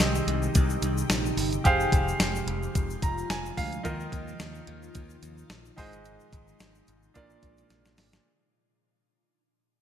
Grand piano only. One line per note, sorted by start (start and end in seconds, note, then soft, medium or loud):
0.00 0.24 C3 medium
0.00 1.61 D#4 medium
0.00 1.61 G4 medium
0.00 1.61 C5 medium
0.00 1.62 D#5 medium
1.64 3.81 G4 medium
1.64 3.81 G#4 medium
1.64 3.82 C5 medium
1.64 3.56 F5 medium
3.03 3.28 A#5 medium
3.30 3.56 G#5 medium
3.57 3.83 F5 medium
3.83 4.63 D#3 medium
3.83 5.73 D#4 medium
3.83 5.73 F4 medium
3.83 5.74 A#4 medium
3.83 5.74 D#5 medium
5.76 6.56 G#2 medium
5.76 7.12 D#4 medium
5.76 7.12 G#4 medium
5.76 7.13 C5 medium
5.76 7.13 D#5 medium
7.14 7.94 A#2 medium
7.14 8.23 D4 medium
7.14 8.23 F4 medium
7.14 8.24 A#4 medium
7.14 8.24 D5 medium